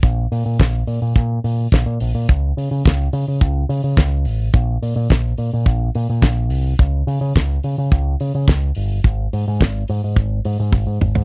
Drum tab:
HH |x-o-x-o-x-o-x-o-|x-o-x-o-x-o-x-o-|x-o-x-o-x-o-x-o-|x-o-x-o-x-o-x-o-|
SD |----o-------o---|----o-------o---|----o-------o---|----o-------o---|
T1 |----------------|----------------|----------------|----------------|
T2 |----------------|----------------|----------------|----------------|
FT |----------------|----------------|----------------|----------------|
BD |o---o---o---o---|o---o---o---o---|o---o---o---o---|o---o---o---o---|

HH |x-o-x-o-x-o-----|
SD |----o-----------|
T1 |------------o---|
T2 |--------------o-|
FT |---------------o|
BD |o---o---o---o---|